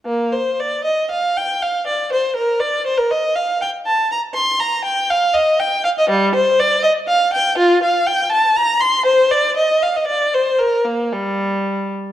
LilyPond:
\new Staff \with { instrumentName = "Violin" } { \time 3/4 \key bes \major \tempo 4 = 120 bes8 c''8 d''8 ees''8 f''8 g''8 | f''8 d''8 c''8 bes'8 d''8 c''16 bes'16 | ees''8 f''8 g''8 a''8 bes''8 c'''8 | bes''8 g''8 f''8 ees''8 g''8 f''16 ees''16 |
\key g \minor g8 c''8 d''8 ees''8 f''8 g''8 | f'8 f''8 g''8 a''8 bes''8 c'''8 | c''8 d''8 ees''8 f''16 ees''16 d''8 c''8 | bes'8 bes8 g4. r8 | }